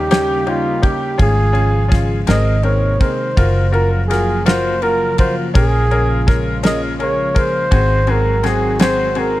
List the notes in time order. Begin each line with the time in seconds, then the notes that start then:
Already playing: D#2 C#3 G3 A#3 D#4 G4
0.11 C#4 D#4 G4, snare, ride
0.47 C#4 D#4 F4 G4, ride
0.82 C#4 D#4 G4, kick, ride
1.18 G#1 F3 G#3 C#4 F4 G#4, kick, ride
1.22 G#4
1.53 C#4 F4 G#4, ride
1.88 C#4 F4 G#4, kick, ride
1.93 snare
2.27 G#1 C3 D#3 A#3 C4 D#4 G#4 A#4 D#5, snare, ride
2.63 C4 G#4 A#4 C#5, ride
3.00 C4 G#4 A#4 C5, kick, ride
3.37 F#1 C#3 F3 F#3 F4 F#4 A#4, kick, ride
3.72 F4 F#4 A#4, ride
4.08 F4 F#4 G#4 A#4, ride
4.12 snare
4.46 F4 F#4 A#4 C5, snare, ride
4.82 F4 F#4 A#4, ride
5.18 F4 F#4 A#4 C5, kick, ride
5.54 A#1 C#4 F4 G#4 A#4, kick, ride
5.58 C#3 G#3
5.91 C#4 G#4 A#4, ride
6.27 C#4 G#4 A#4, kick, snare, ride
6.63 C#4 G#4 A#4 D#5, snare, ride
6.99 C#4 G#4 A#4 C#5, ride
7.34 C#4 G#4 A#4 C5, kick, ride
7.71 G#1 D#3 F#3 C4 F#4 G#4, kick, ride
8.07 C4 F#4 G#4 A#4, ride
8.43 C4 F#4 G#4, snare, ride
8.47 G#4
8.79 C4 F#4 G#4 C5, snare, ride
9.15 C4 F#4 G#4, ride
9.19 A#4